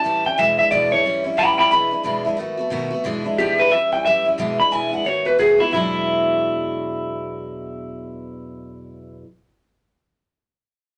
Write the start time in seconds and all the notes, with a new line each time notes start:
Already playing: A5
0.04 A2 E3 G3 C#4 E4
0.25 G3 C#4 E4 G5
0.38 E2 B2 E3 G#3 D4 E4 E5
0.57 E3 G#3 D4 E4 E5
0.71 E2 B2 E3 G#3 D4 E4 D5
0.91 E3 G#3 D4 E4 C#5
1.03 E3 G3 C#4 E4
1.24 G3 C#4 E4
1.37 A2 E3 G3 C#4 E4 G5 B5
1.58 G3 C#4 E4 G5 B5
1.71 E2 B2 E3 G#3 D4 E4 B5
1.91 E3 G#3 D4 E4
2.03 E2 B2 E3 G#3 D4 E4
2.25 E3 G#3 D4 E4
2.37 D#3 A3 B3 F#4
2.57 A3 B3 F#4
2.70 B2 D#3 A3 B3 F#4
2.91 A3 B3 F#4
3.04 E2 B2 E3 G#3 D4 E4
3.24 E3 G#3 D4 E4
3.38 E2 B2 E3 G#3 D4 E4 G4
3.58 E3 G#3 D4 E4 B4
3.71 E3 G3 C#4 E4 E5
3.92 G3 C#4 E4 G5
4.05 A2 E3 G3 C#4 E4 E5
4.25 G3 C#4 E4
4.38 E2 B2 E3 G#3 D4 E4
4.58 E3 G#3 D4 E4 B5
4.71 E2 B2 E3 G#3 D4 E4 G#5
4.92 E3 G#3 D4 E4 F#5
5.05 D#3 A3 B3 F#4 C#5
5.25 A3 B3 F#4 B4
5.38 B2 D#3 A3 B3 F#4 G#4
5.58 A3 B3 E4 F#4
5.71 E2 B2 F#3 G#3 E4
5.76 D4 E4